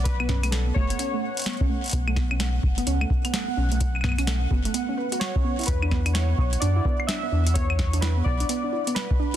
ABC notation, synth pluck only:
X:1
M:4/4
L:1/16
Q:"Swing 16ths" 1/4=128
K:Bm
V:1 name="Synth pluck"
z B, C A, z B, A, B, C A, z2 B, C A, z | B, A, B, C A, z2 B, C A, z B, A, B, C A, | z2 B, C A, z B, A, B, C B F z C B, E | z D B, D E B, z2 D E B, z D B, D E |
B, z2 D E B, z D B, D E B, z2 D z |]